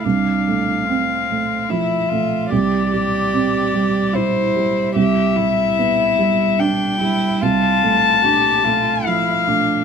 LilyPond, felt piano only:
\new Staff \with { instrumentName = "Felt piano" } { \clef bass \time 3/4 \key c \major \tempo 4 = 73 c,8 a8 c'8 a8 f8 a8 | c,8 g8 c'8 g8 e'8 g8 | c,8 g8 b8 g8 d'8 g8 | c,8 a8 d'8 a8 f8 a8 | }